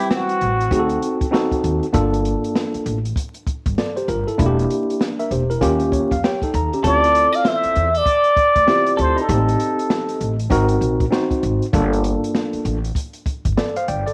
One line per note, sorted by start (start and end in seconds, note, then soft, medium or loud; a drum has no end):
0.00 0.52 G3 medium
0.00 0.52 C4 medium
0.00 0.52 E4 medium
0.00 0.53 B4 medium
0.10 1.29 C4 medium
0.10 1.30 F#4 medium
0.10 snare loud
0.29 closed hi-hat medium
0.41 0.66 A1 medium
0.41 closed hi-hat medium
0.61 closed hi-hat medium
0.71 0.96 D2 medium
0.71 1.24 C4 medium
0.71 1.24 D#4 medium
0.71 1.25 F#4 medium
0.71 0.80 G#4 medium
0.71 kick medium
0.71 closed hi-hat loud
0.79 1.28 A4 medium
0.89 closed hi-hat soft
1.02 closed hi-hat medium
1.21 kick loud
1.21 closed hi-hat medium
1.31 1.85 C4 medium
1.31 1.85 D#4 medium
1.31 1.86 F#4 medium
1.31 1.86 A4 loud
1.31 snare loud
1.51 kick medium
1.51 closed hi-hat medium
1.64 1.79 D#2 medium
1.64 closed hi-hat medium
1.83 closed hi-hat soft
1.93 2.33 G1 loud
1.93 2.97 A#3 medium
1.93 2.97 D4 medium
1.93 2.97 F4 medium
1.93 2.97 A4 loud
1.93 kick loud
1.93 closed hi-hat loud
2.14 closed hi-hat medium
2.25 closed hi-hat medium
2.44 closed hi-hat medium
2.55 snare loud
2.74 muted upright bass stroke soft
2.74 closed hi-hat soft
2.86 3.10 A1 medium
2.86 closed hi-hat medium
3.05 closed hi-hat medium
3.16 kick medium
3.16 closed hi-hat medium
3.34 closed hi-hat soft
3.47 kick medium
3.47 closed hi-hat medium
3.66 3.75 G1 medium
3.66 kick medium
3.66 closed hi-hat medium
3.78 3.96 A4 medium
3.78 3.96 D5 medium
3.78 snare loud
3.96 4.08 G4 medium
3.96 4.08 C5 medium
3.96 closed hi-hat medium
4.08 4.23 G1 medium
4.08 4.27 F4 medium
4.08 4.26 A#4 medium
4.08 closed hi-hat medium
4.27 4.37 E4 medium
4.27 4.56 A4 medium
4.27 closed hi-hat soft
4.38 4.63 E1 loud
4.38 5.42 A#3 medium
4.38 5.42 D4 medium
4.38 5.00 E4 medium
4.38 4.47 F4 medium
4.38 kick loud
4.38 closed hi-hat medium
4.46 5.04 G4 loud
4.59 closed hi-hat medium
4.70 closed hi-hat medium
4.90 closed hi-hat medium
5.01 snare loud
5.19 5.30 A#4 medium
5.19 5.30 E5 medium
5.19 closed hi-hat soft
5.31 5.55 E1 medium
5.31 5.49 G4 medium
5.31 5.49 C5 medium
5.31 closed hi-hat medium
5.50 5.79 E4 medium
5.50 5.79 A#4 medium
5.50 closed hi-hat medium
5.61 6.01 D#2 loud
5.61 6.14 A#3 loud
5.61 6.14 C#4 medium
5.61 6.15 F4 medium
5.61 6.15 G4 loud
5.61 kick medium
5.61 closed hi-hat medium
5.80 closed hi-hat soft
5.92 6.10 C#5 medium
5.92 kick medium
5.92 closed hi-hat medium
6.11 6.20 F2 medium
6.11 6.22 F5 medium
6.11 kick medium
6.11 closed hi-hat medium
6.24 6.41 G4 medium
6.24 6.41 C#5 medium
6.24 6.52 G5 medium
6.24 snare loud
6.42 6.72 D#4 medium
6.42 6.71 A4 medium
6.42 kick medium
6.42 closed hi-hat medium
6.54 6.68 D#2 medium
6.54 6.83 A#5 medium
6.54 closed hi-hat medium
6.73 7.02 C#4 soft
6.73 7.02 G4 medium
6.73 closed hi-hat soft
6.84 7.23 D2 loud
6.84 7.87 C4 medium
6.84 7.88 E4 medium
6.84 7.88 F4 medium
6.84 7.33 A4 medium
6.84 7.88 A4 medium
6.84 7.37 D5 loud
6.84 kick loud
6.84 closed hi-hat medium
7.04 closed hi-hat medium
7.15 closed hi-hat medium
7.33 7.45 D5 medium
7.33 7.50 F5 loud
7.33 closed hi-hat medium
7.45 7.94 C5 medium
7.45 7.99 E5 loud
7.45 snare loud
7.63 muted upright bass stroke soft
7.63 closed hi-hat medium
7.75 8.00 E2 medium
7.75 closed hi-hat medium
7.94 8.96 A4 medium
7.94 9.03 D5 loud
7.94 closed hi-hat medium
8.06 kick medium
8.06 closed hi-hat medium
8.24 closed hi-hat soft
8.36 kick medium
8.36 closed hi-hat medium
8.56 8.65 D2 medium
8.56 kick medium
8.56 closed hi-hat medium
8.67 9.20 C4 medium
8.67 9.20 E4 medium
8.67 9.21 F4 medium
8.67 9.21 G4 medium
8.67 snare loud
8.86 closed hi-hat medium
8.97 9.13 D2 loud
8.97 9.16 A4 medium
8.97 closed hi-hat medium
9.01 9.23 C5 loud
9.16 10.39 D#4 medium
9.16 closed hi-hat soft
9.21 10.41 A4 medium
9.28 9.53 A1 loud
9.28 9.36 A#3 medium
9.28 10.32 D#4 medium
9.28 10.32 G4 medium
9.28 10.33 A4 medium
9.28 kick loud
9.28 closed hi-hat medium
9.35 10.35 C4 medium
9.49 closed hi-hat medium
9.60 closed hi-hat medium
9.79 closed hi-hat medium
9.90 snare loud
10.09 closed hi-hat medium
10.21 10.45 A1 medium
10.21 closed hi-hat medium
10.39 closed hi-hat medium
10.50 10.75 G#1 loud
10.50 11.03 C4 medium
10.50 11.04 D#4 medium
10.50 11.04 F#4 medium
10.50 11.04 A#4 loud
10.50 kick medium
10.50 closed hi-hat loud
10.68 closed hi-hat medium
10.81 11.06 A#1 medium
10.81 closed hi-hat medium
11.00 kick medium
11.00 closed hi-hat medium
11.11 11.64 C4 medium
11.11 11.65 D#4 medium
11.11 11.65 F#4 medium
11.11 11.65 C5 medium
11.11 snare loud
11.31 kick medium
11.31 closed hi-hat medium
11.43 11.58 G#1 medium
11.43 closed hi-hat medium
11.62 closed hi-hat soft
11.73 12.13 G1 loud
11.73 12.76 A#3 medium
11.73 12.77 D4 medium
11.73 12.77 F4 medium
11.73 12.77 A4 medium
11.73 kick loud
11.73 closed hi-hat medium
11.93 closed hi-hat medium
12.04 closed hi-hat medium
12.24 closed hi-hat medium
12.35 snare loud
12.53 muted upright bass stroke soft
12.53 closed hi-hat medium
12.65 12.89 A1 medium
12.65 closed hi-hat medium
12.85 closed hi-hat medium
12.95 kick medium
12.95 closed hi-hat medium
13.13 closed hi-hat soft
13.26 kick medium
13.26 closed hi-hat medium
13.45 13.55 G1 medium
13.45 kick medium
13.45 closed hi-hat medium
13.57 13.75 A4 medium
13.57 13.75 D5 medium
13.57 snare loud
13.76 13.88 C5 medium
13.76 13.87 F5 medium
13.76 closed hi-hat medium
13.88 14.03 G1 medium
13.88 14.05 D5 medium
13.88 14.06 G5 medium
13.88 closed hi-hat medium
14.06 14.13 A4 medium
14.06 14.13 D5 medium
14.06 closed hi-hat soft